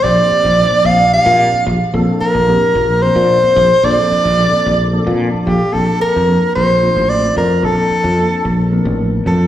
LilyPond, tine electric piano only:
\new Staff \with { instrumentName = "Tine electric piano" } { \time 7/8 \key bes \major \tempo 4 = 110 << { r2. r8 | r2. r8 | r2 r8 a''8 f''8 | r2. r8 |
r2. r8 | } \\ { <f bes c' d' g'>8 r8 <f bes c' d' c''>8 r8 <f bes c' d' g'>4 r8 | <f bes c' d' a'>8 r8 <f bes c' d' g'>8 r8 <f bes c' d' c''>4 r8 | <f bes c' d' a'>8 r8 <f bes c' d' a'>8 r8 <f bes c' d' a'>4 r8 | <f bes c' d' a'>8 r8 <f bes c' d' a'>8 r8 <f bes c' d' f'>4 r8 |
<f bes c' d' a'>8 r8 <f bes c' d' a'>8 r8 <f bes c' d' bes'>4 r8 | } >> }